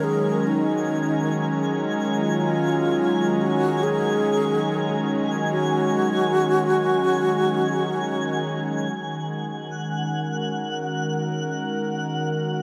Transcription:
0.00 8.89 D#3 medium
0.00 8.91 F#3 medium
0.00 8.89 G#3 medium
0.00 8.90 C#4 medium
0.00 0.48 G#4 medium
0.00 8.93 G#5 medium
0.00 8.91 A#5 medium
0.47 1.73 D#4 medium
2.17 3.43 F4 medium
3.41 3.85 F#4 medium
3.83 5.10 G#4 medium
5.52 8.44 F#4 loud
8.90 12.62 D#3 medium
8.90 12.62 F#5 medium
9.08 12.62 G#3 medium
9.81 12.62 C#4 medium
9.99 12.62 A#4 medium
10.11 12.62 F#4 medium

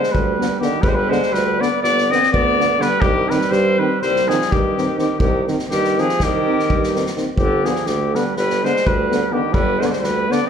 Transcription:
0.00 0.16 G#3 medium
0.00 0.13 C5 medium
0.00 snare soft
0.12 0.52 D2 medium
0.12 0.60 G3 medium
0.12 0.59 B4 medium
0.12 kick medium
0.38 0.48 D3 soft
0.38 0.47 B3 medium
0.38 snare soft
0.60 0.70 D3 medium
0.60 0.82 D#3 medium
0.60 0.68 B3 medium
0.60 0.84 G4 medium
0.60 snare soft
0.80 1.10 G1 medium
0.80 0.89 G3 medium
0.80 0.90 B4 medium
0.80 kick medium
0.87 0.98 G#3 medium
0.87 0.96 C5 medium
0.95 1.10 G3 medium
0.95 1.11 B4 medium
1.09 1.19 D3 medium
1.09 1.34 G#3 medium
1.09 1.19 B3 medium
1.09 1.34 C5 medium
1.09 snare soft
1.23 snare soft
1.32 1.61 D2 medium
1.32 1.62 G3 medium
1.32 1.62 B4 medium
1.32 snare soft
1.60 1.69 D3 medium
1.60 1.69 B3 medium
1.60 1.81 B3 medium
1.60 1.82 D5 medium
1.60 snare soft
1.81 2.11 G1 medium
1.81 2.12 B3 medium
1.81 2.12 D5 loud
1.81 snare soft
1.98 snare soft
2.10 2.19 D3 medium
2.10 2.20 B3 medium
2.10 2.31 C4 medium
2.10 2.32 D#5 loud
2.10 snare soft
2.23 snare soft
2.32 2.71 D2 medium
2.32 2.81 B3 medium
2.32 2.83 D5 loud
2.32 kick medium
2.58 2.67 D3 medium
2.58 2.66 B3 medium
2.58 snare soft
2.79 2.88 D3 medium
2.79 3.03 G3 medium
2.79 2.88 B3 medium
2.79 3.03 B4 medium
2.79 snare soft
3.01 3.29 C2 loud
3.01 3.32 D#3 medium
3.01 3.31 G4 loud
3.01 kick medium
3.29 3.38 D#3 medium
3.29 3.53 G3 medium
3.29 3.38 C4 medium
3.29 3.53 B4 medium
3.29 snare soft
3.41 snare soft
3.51 3.79 G2 loud
3.51 3.81 G3 medium
3.51 3.80 C5 loud
3.51 snare soft
3.79 3.88 D#3 medium
3.79 4.02 G3 medium
3.79 3.89 C4 medium
3.79 4.01 B4 medium
4.02 4.29 C2 medium
4.02 4.31 G3 medium
4.02 4.29 C5 medium
4.02 snare soft
4.16 snare soft
4.28 4.37 D#3 medium
4.28 4.53 F3 medium
4.28 4.38 C4 soft
4.28 4.53 G#4 medium
4.28 snare soft
4.41 snare soft
4.51 4.89 G2 medium
4.51 4.98 D#3 medium
4.51 4.98 G4 medium
4.51 kick medium
4.77 4.85 D#3 soft
4.77 4.86 C4 medium
4.77 snare soft
4.97 5.06 D#3 medium
4.97 5.19 D#3 medium
4.97 5.06 C4 medium
4.97 5.19 G4 medium
4.97 snare soft
5.19 5.47 C2 medium
5.19 5.47 D#3 medium
5.19 5.46 G4 medium
5.19 kick medium
5.47 5.56 D#3 medium
5.47 5.56 C4 soft
5.47 snare soft
5.59 snare soft
5.69 5.97 G2 medium
5.69 6.01 D#3 medium
5.69 6.01 G4 medium
5.69 snare soft
5.84 snare soft
5.97 6.06 D#3 medium
5.97 6.24 F3 medium
5.97 6.06 C4 medium
5.97 6.24 G#4 medium
5.97 snare soft
6.09 snare soft
6.19 6.47 C2 medium
6.19 7.17 D#3 medium
6.19 7.17 G4 medium
6.19 kick medium
6.19 snare soft
6.47 6.56 D#3 medium
6.47 6.56 C4 medium
6.59 snare soft
6.70 7.07 G2 medium
6.70 kick medium
6.83 snare soft
6.94 7.03 D#3 soft
6.94 7.03 C4 soft
6.94 snare soft
7.06 snare soft
7.15 7.24 D#3 soft
7.15 7.25 C4 soft
7.15 snare soft
7.36 7.64 G1 loud
7.36 7.67 D3 medium
7.36 7.66 G4 medium
7.36 kick medium
7.65 7.74 D3 soft
7.65 7.89 F3 medium
7.65 7.73 B3 soft
7.65 7.88 G#4 medium
7.65 snare soft
7.75 snare soft
7.86 8.13 D2 medium
7.86 8.16 D3 medium
7.86 8.17 G4 medium
7.86 snare soft
8.14 8.23 D3 medium
8.14 8.36 G3 medium
8.14 8.24 B3 medium
8.14 8.36 B4 medium
8.14 snare soft
8.36 8.63 G1 medium
8.36 8.65 G3 medium
8.36 8.66 B4 medium
8.36 snare soft
8.50 snare soft
8.64 8.73 D3 medium
8.64 8.88 G#3 medium
8.64 8.73 B3 medium
8.64 8.88 C5 medium
8.64 snare soft
8.76 snare soft
8.86 9.23 D2 medium
8.86 9.34 G3 medium
8.86 9.34 B4 medium
8.86 kick medium
9.10 9.20 D3 medium
9.10 9.19 B3 medium
9.10 snare soft
9.32 9.41 D3 medium
9.32 9.54 D#3 medium
9.32 9.41 B3 medium
9.32 9.55 G4 medium
9.52 9.80 G1 medium
9.52 9.80 G3 medium
9.52 9.82 B4 loud
9.52 kick medium
9.79 9.90 D3 medium
9.79 9.86 G#3 medium
9.79 9.89 B3 medium
9.79 9.87 C5 medium
9.79 snare soft
9.84 9.94 G#3 medium
9.84 9.90 B3 medium
9.84 9.93 D5 medium
9.91 10.01 G#3 medium
9.91 9.99 C5 medium
9.91 snare soft
9.99 10.30 D2 medium
9.99 10.30 G3 medium
9.99 10.06 C5 medium
10.04 10.33 B4 medium
10.04 snare soft
10.29 10.40 D3 medium
10.29 10.43 B3 medium
10.29 10.39 B3 medium
10.29 10.47 D5 medium
10.29 snare soft
10.44 10.49 C4 medium

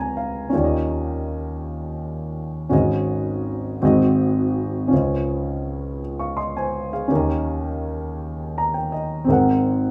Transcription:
0.00 0.48 C#2 medium
0.00 0.47 C3 medium
0.00 0.48 C#3 medium
0.00 0.48 G#4 soft
0.00 0.49 A#4 medium
0.00 0.50 C#5 medium
0.00 0.15 G#5 medium
0.00 0.54 A#5 medium
0.17 0.51 F5 medium
0.49 2.68 D#3 medium
0.49 2.66 C#4 medium
0.49 2.68 F4 medium
0.54 2.69 D#2 medium
0.54 2.69 G4 medium
0.54 0.61 D5 medium
0.64 2.72 D#5 medium
2.69 3.77 G#1 medium
2.69 3.77 G#2 medium
2.69 3.80 C#4 medium
2.69 3.81 F#4 medium
2.69 3.82 G#4 medium
2.69 3.82 D#5 medium
3.82 4.88 G#1 medium
3.82 4.88 G#2 medium
3.82 4.91 C4 medium
3.82 4.92 F#4 medium
3.82 4.92 G#4 medium
3.82 4.93 D#5 medium
4.88 7.06 C#2 medium
4.88 7.06 C#3 medium
4.88 7.05 C#4 medium
4.88 7.06 F4 medium
4.93 5.99 C5 medium
4.93 6.00 D#5 medium
6.19 6.37 F5 soft
6.19 6.37 C#6 medium
6.37 6.55 D#5 medium
6.37 6.54 C6 medium
6.57 6.91 C5 medium
6.57 6.91 G#5 medium
6.93 7.27 G#4 soft
6.93 7.27 F5 medium
7.08 9.26 D#2 medium
7.08 9.26 D#3 medium
7.08 9.24 C#4 medium
7.08 9.25 G4 medium
7.13 9.26 A#4 soft
7.13 8.91 D#5 medium
8.58 8.74 A#5 medium
8.74 8.91 G5 medium
8.92 9.26 D#5 medium
9.25 9.91 G#1 medium
9.25 9.91 G#2 medium
9.25 9.91 C4 medium
9.25 9.91 G#4 soft
9.30 9.91 A#4 medium
9.30 9.91 F#5 medium

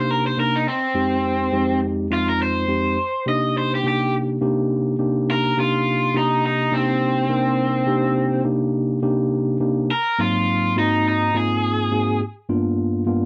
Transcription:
0.00 0.33 C3 medium
0.00 0.34 A#3 medium
0.00 0.34 D4 medium
0.00 0.34 D#4 medium
0.00 0.34 G4 medium
0.00 0.11 C5 medium
0.11 0.25 A#4 medium
0.27 0.38 C5 medium
0.37 0.66 C3 medium
0.37 0.66 A#3 medium
0.37 0.66 D4 medium
0.37 0.66 D#4 medium
0.37 0.66 A#4 medium
0.37 0.54 A#4 medium
0.56 0.67 D#4 medium
0.68 1.79 C4 loud
0.94 1.49 F2 medium
0.94 1.49 G#3 medium
0.94 1.49 C4 medium
0.94 1.49 D#4 medium
0.94 1.49 G4 medium
1.52 2.07 F2 medium
1.52 2.07 G#3 medium
1.52 2.07 C4 medium
1.52 2.07 D#4 medium
1.52 2.07 G4 medium
2.10 2.64 F2 medium
2.10 2.64 G#3 medium
2.10 2.64 C4 medium
2.10 2.64 D#4 medium
2.10 2.65 F4 medium
2.10 2.27 F4 medium
2.29 2.40 A#4 medium
2.42 3.25 C5 medium
2.68 2.97 F2 medium
2.68 2.97 G#3 medium
2.68 2.97 C4 medium
2.68 2.97 D#4 medium
2.68 2.97 G4 medium
3.26 3.80 C3 medium
3.26 3.80 A#3 medium
3.26 3.80 D4 medium
3.26 3.80 D#4 medium
3.26 3.80 G4 medium
3.26 3.55 D#5 medium
3.58 3.71 C5 loud
3.75 3.85 G4 medium
3.83 4.37 C3 medium
3.83 4.37 A#3 medium
3.83 4.37 D4 medium
3.83 4.38 D#4 medium
3.83 4.38 G4 medium
3.88 4.14 G4 loud
4.41 4.95 C3 medium
4.41 4.95 A#3 medium
4.41 4.95 D4 medium
4.41 4.95 D#4 medium
4.41 4.96 G4 loud
4.99 5.53 C3 medium
4.99 5.53 A#3 medium
4.99 5.53 D4 medium
4.99 5.53 D#4 medium
4.99 5.53 G4 medium
5.31 5.57 A#4 loud
5.57 6.11 C3 medium
5.57 6.11 A#3 medium
5.57 6.11 D4 medium
5.57 6.11 D#4 medium
5.57 6.14 F4 loud
5.57 6.11 G4 medium
6.14 6.68 C3 medium
6.14 6.68 A#3 medium
6.14 6.68 D4 medium
6.14 6.68 D#4 medium
6.14 6.44 D#4 medium
6.14 6.68 G4 medium
6.46 6.73 D#4 medium
6.72 7.26 C3 medium
6.72 7.26 A#3 medium
6.72 8.42 C4 loud
6.72 7.26 D4 medium
6.72 7.26 D#4 medium
6.72 7.26 G4 medium
7.29 7.83 C3 medium
7.29 7.83 A#3 medium
7.29 7.84 D4 medium
7.29 7.84 D#4 medium
7.29 7.83 A#4 medium
7.87 8.41 C3 medium
7.87 8.41 A#3 medium
7.87 8.41 D4 medium
7.87 8.41 D#4 medium
7.87 8.41 G4 loud
8.44 8.99 C3 medium
8.44 8.99 A#3 medium
8.44 8.99 D4 medium
8.44 8.99 D#4 medium
8.44 8.99 G4 medium
9.02 9.57 C3 medium
9.02 9.57 A#3 medium
9.02 9.57 D4 medium
9.02 9.57 D#4 medium
9.02 9.57 G4 loud
9.60 9.89 C3 medium
9.60 9.89 A#3 medium
9.60 9.89 D4 medium
9.60 9.89 D#4 medium
9.60 9.90 G4 medium
9.91 10.18 A#4 loud
10.19 10.73 G#2 medium
10.19 10.73 F#3 medium
10.19 10.73 A#3 medium
10.19 10.73 C4 medium
10.19 10.73 D#4 medium
10.19 10.76 F4 loud
10.76 11.30 G#2 medium
10.76 11.30 A#3 medium
10.76 11.30 C4 medium
10.76 11.30 D#4 medium
10.76 11.05 D#4 loud
10.76 11.31 F#4 medium
11.08 11.35 D#4 medium
11.34 11.88 G#2 medium
11.34 11.88 A#3 medium
11.34 11.88 C4 medium
11.34 11.88 D#4 medium
11.34 11.89 F4 medium
11.34 12.20 G#4 loud
11.92 12.21 G#2 medium
11.92 12.21 A#3 medium
11.92 12.21 C4 medium
11.92 12.21 D#4 medium
11.92 12.21 F#4 medium
12.49 13.03 G2 medium
12.49 13.04 A#3 medium
12.49 13.04 B3 medium
12.49 13.04 D4 medium
12.49 13.04 F4 loud
13.07 13.26 G2 medium
13.07 13.26 A#3 medium
13.07 13.26 B3 medium
13.07 13.26 D4 medium
13.07 13.26 F4 loud

